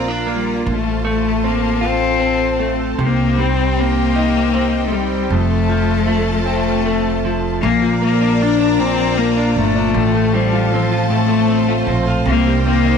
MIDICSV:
0, 0, Header, 1, 5, 480
1, 0, Start_track
1, 0, Key_signature, -2, "major"
1, 0, Tempo, 772201
1, 418, Time_signature, 6, 3, 24, 8
1, 8067, End_track
2, 0, Start_track
2, 0, Title_t, "String section"
2, 0, Program_c, 0, 48
2, 0, Note_on_c, 0, 65, 69
2, 0, Note_on_c, 0, 70, 59
2, 0, Note_on_c, 0, 74, 59
2, 0, Note_on_c, 0, 82, 79
2, 397, Note_off_c, 0, 70, 0
2, 399, Note_off_c, 0, 74, 0
2, 399, Note_off_c, 0, 82, 0
2, 417, Note_on_c, 0, 69, 62
2, 419, Note_on_c, 0, 81, 76
2, 423, Note_on_c, 0, 72, 61
2, 1829, Note_off_c, 0, 65, 0
2, 1845, Note_off_c, 0, 69, 0
2, 1846, Note_off_c, 0, 81, 0
2, 1858, Note_on_c, 0, 79, 83
2, 1860, Note_on_c, 0, 67, 67
2, 1861, Note_on_c, 0, 63, 73
2, 3286, Note_off_c, 0, 79, 0
2, 3287, Note_off_c, 0, 63, 0
2, 3287, Note_off_c, 0, 67, 0
2, 3291, Note_on_c, 0, 81, 85
2, 3293, Note_on_c, 0, 65, 79
2, 3295, Note_on_c, 0, 69, 72
2, 4719, Note_off_c, 0, 72, 0
2, 4722, Note_off_c, 0, 81, 0
2, 4723, Note_off_c, 0, 65, 0
2, 4724, Note_off_c, 0, 69, 0
2, 4740, Note_on_c, 0, 82, 92
2, 4743, Note_on_c, 0, 65, 72
2, 4743, Note_on_c, 0, 74, 71
2, 6166, Note_off_c, 0, 82, 0
2, 6167, Note_off_c, 0, 74, 0
2, 6192, Note_on_c, 0, 81, 86
2, 6193, Note_on_c, 0, 69, 74
2, 6194, Note_on_c, 0, 72, 73
2, 7596, Note_off_c, 0, 65, 0
2, 7611, Note_off_c, 0, 81, 0
2, 7612, Note_off_c, 0, 69, 0
2, 7613, Note_on_c, 0, 67, 75
2, 7613, Note_on_c, 0, 79, 93
2, 7614, Note_on_c, 0, 51, 89
2, 8067, Note_off_c, 0, 51, 0
2, 8067, Note_off_c, 0, 67, 0
2, 8067, Note_off_c, 0, 72, 0
2, 8067, Note_off_c, 0, 79, 0
2, 8067, End_track
3, 0, Start_track
3, 0, Title_t, "Cello"
3, 0, Program_c, 1, 42
3, 193, Note_on_c, 1, 55, 67
3, 410, Note_off_c, 1, 55, 0
3, 445, Note_on_c, 1, 57, 80
3, 656, Note_off_c, 1, 57, 0
3, 681, Note_on_c, 1, 57, 83
3, 918, Note_on_c, 1, 58, 82
3, 927, Note_off_c, 1, 57, 0
3, 1160, Note_on_c, 1, 60, 103
3, 1169, Note_off_c, 1, 58, 0
3, 1690, Note_off_c, 1, 60, 0
3, 1881, Note_on_c, 1, 58, 85
3, 2113, Note_on_c, 1, 60, 90
3, 2123, Note_off_c, 1, 58, 0
3, 2365, Note_on_c, 1, 58, 93
3, 2375, Note_off_c, 1, 60, 0
3, 3018, Note_off_c, 1, 58, 0
3, 3022, Note_on_c, 1, 57, 53
3, 3071, Note_on_c, 1, 55, 71
3, 3081, Note_off_c, 1, 57, 0
3, 3314, Note_on_c, 1, 57, 88
3, 3324, Note_off_c, 1, 55, 0
3, 4022, Note_off_c, 1, 57, 0
3, 4025, Note_on_c, 1, 57, 83
3, 4539, Note_off_c, 1, 57, 0
3, 4736, Note_on_c, 1, 58, 103
3, 4962, Note_off_c, 1, 58, 0
3, 4995, Note_on_c, 1, 58, 90
3, 5236, Note_on_c, 1, 62, 92
3, 5245, Note_off_c, 1, 58, 0
3, 5468, Note_on_c, 1, 60, 106
3, 5477, Note_off_c, 1, 62, 0
3, 5704, Note_on_c, 1, 58, 92
3, 5713, Note_off_c, 1, 60, 0
3, 5943, Note_off_c, 1, 58, 0
3, 5951, Note_on_c, 1, 57, 93
3, 6421, Note_on_c, 1, 55, 93
3, 6430, Note_off_c, 1, 57, 0
3, 6672, Note_on_c, 1, 53, 83
3, 6681, Note_off_c, 1, 55, 0
3, 6903, Note_off_c, 1, 53, 0
3, 6907, Note_on_c, 1, 57, 101
3, 7419, Note_off_c, 1, 57, 0
3, 7628, Note_on_c, 1, 58, 101
3, 7847, Note_off_c, 1, 58, 0
3, 7864, Note_on_c, 1, 58, 101
3, 8067, Note_off_c, 1, 58, 0
3, 8067, End_track
4, 0, Start_track
4, 0, Title_t, "Clean electric guitar"
4, 0, Program_c, 2, 27
4, 0, Note_on_c, 2, 46, 59
4, 0, Note_on_c, 2, 53, 67
4, 0, Note_on_c, 2, 58, 51
4, 0, Note_on_c, 2, 65, 54
4, 51, Note_on_c, 2, 62, 46
4, 159, Note_off_c, 2, 58, 0
4, 166, Note_on_c, 2, 58, 52
4, 424, Note_off_c, 2, 46, 0
4, 436, Note_off_c, 2, 53, 0
4, 461, Note_off_c, 2, 58, 0
4, 463, Note_off_c, 2, 62, 0
4, 651, Note_on_c, 2, 57, 52
4, 895, Note_on_c, 2, 60, 49
4, 1123, Note_off_c, 2, 65, 0
4, 1126, Note_on_c, 2, 65, 57
4, 1364, Note_off_c, 2, 60, 0
4, 1367, Note_on_c, 2, 60, 48
4, 1605, Note_off_c, 2, 57, 0
4, 1612, Note_on_c, 2, 57, 54
4, 1856, Note_on_c, 2, 48, 68
4, 1902, Note_off_c, 2, 65, 0
4, 1905, Note_off_c, 2, 57, 0
4, 2097, Note_on_c, 2, 55, 56
4, 2341, Note_off_c, 2, 60, 0
4, 2344, Note_on_c, 2, 60, 55
4, 2585, Note_on_c, 2, 63, 62
4, 2820, Note_off_c, 2, 60, 0
4, 2822, Note_on_c, 2, 60, 52
4, 3050, Note_off_c, 2, 55, 0
4, 3058, Note_on_c, 2, 55, 56
4, 3299, Note_off_c, 2, 48, 0
4, 3306, Note_on_c, 2, 41, 77
4, 3348, Note_off_c, 2, 55, 0
4, 3352, Note_off_c, 2, 63, 0
4, 3538, Note_on_c, 2, 53, 52
4, 3771, Note_off_c, 2, 60, 0
4, 3774, Note_on_c, 2, 57, 55
4, 4014, Note_on_c, 2, 60, 58
4, 4255, Note_off_c, 2, 57, 0
4, 4262, Note_on_c, 2, 57, 53
4, 4503, Note_off_c, 2, 53, 0
4, 4506, Note_on_c, 2, 53, 57
4, 4744, Note_off_c, 2, 41, 0
4, 4748, Note_on_c, 2, 46, 72
4, 4786, Note_off_c, 2, 60, 0
4, 4790, Note_off_c, 2, 57, 0
4, 4858, Note_off_c, 2, 53, 0
4, 4860, Note_on_c, 2, 53, 62
4, 4984, Note_on_c, 2, 58, 55
4, 5106, Note_on_c, 2, 62, 53
4, 5223, Note_off_c, 2, 58, 0
4, 5230, Note_on_c, 2, 58, 57
4, 5340, Note_off_c, 2, 62, 0
4, 5347, Note_on_c, 2, 62, 62
4, 5456, Note_off_c, 2, 46, 0
4, 5464, Note_on_c, 2, 46, 75
4, 5589, Note_off_c, 2, 53, 0
4, 5591, Note_on_c, 2, 53, 61
4, 5703, Note_off_c, 2, 58, 0
4, 5710, Note_on_c, 2, 58, 54
4, 5816, Note_off_c, 2, 62, 0
4, 5823, Note_on_c, 2, 62, 67
4, 5946, Note_off_c, 2, 58, 0
4, 6058, Note_off_c, 2, 62, 0
4, 6065, Note_on_c, 2, 62, 55
4, 6182, Note_off_c, 2, 46, 0
4, 6183, Note_on_c, 2, 45, 75
4, 6231, Note_off_c, 2, 62, 0
4, 6303, Note_off_c, 2, 53, 0
4, 6306, Note_on_c, 2, 57, 59
4, 6430, Note_on_c, 2, 60, 59
4, 6545, Note_on_c, 2, 65, 55
4, 6672, Note_off_c, 2, 60, 0
4, 6675, Note_on_c, 2, 60, 62
4, 6776, Note_off_c, 2, 65, 0
4, 6784, Note_on_c, 2, 65, 63
4, 6892, Note_off_c, 2, 45, 0
4, 6899, Note_on_c, 2, 45, 78
4, 7010, Note_off_c, 2, 57, 0
4, 7017, Note_on_c, 2, 57, 60
4, 7137, Note_off_c, 2, 60, 0
4, 7140, Note_on_c, 2, 60, 57
4, 7256, Note_off_c, 2, 65, 0
4, 7263, Note_on_c, 2, 65, 69
4, 7383, Note_off_c, 2, 60, 0
4, 7385, Note_on_c, 2, 60, 60
4, 7499, Note_off_c, 2, 65, 0
4, 7507, Note_on_c, 2, 65, 60
4, 7624, Note_on_c, 2, 48, 75
4, 7666, Note_off_c, 2, 57, 0
4, 7667, Note_off_c, 2, 45, 0
4, 7671, Note_off_c, 2, 65, 0
4, 7752, Note_on_c, 2, 55, 58
4, 7870, Note_off_c, 2, 60, 0
4, 7873, Note_on_c, 2, 60, 57
4, 7987, Note_on_c, 2, 63, 58
4, 8067, Note_off_c, 2, 48, 0
4, 8067, Note_off_c, 2, 55, 0
4, 8067, Note_off_c, 2, 60, 0
4, 8067, Note_off_c, 2, 63, 0
4, 8067, End_track
5, 0, Start_track
5, 0, Title_t, "Upright bass"
5, 0, Program_c, 3, 32
5, 0, Note_on_c, 3, 34, 79
5, 391, Note_off_c, 3, 34, 0
5, 413, Note_on_c, 3, 33, 96
5, 1833, Note_off_c, 3, 33, 0
5, 1856, Note_on_c, 3, 36, 92
5, 3274, Note_off_c, 3, 36, 0
5, 3297, Note_on_c, 3, 29, 88
5, 4714, Note_off_c, 3, 29, 0
5, 4743, Note_on_c, 3, 34, 99
5, 5917, Note_off_c, 3, 34, 0
5, 5942, Note_on_c, 3, 31, 80
5, 6167, Note_off_c, 3, 31, 0
5, 6181, Note_on_c, 3, 33, 94
5, 7355, Note_off_c, 3, 33, 0
5, 7377, Note_on_c, 3, 34, 81
5, 7604, Note_off_c, 3, 34, 0
5, 7617, Note_on_c, 3, 36, 100
5, 8067, Note_off_c, 3, 36, 0
5, 8067, End_track
0, 0, End_of_file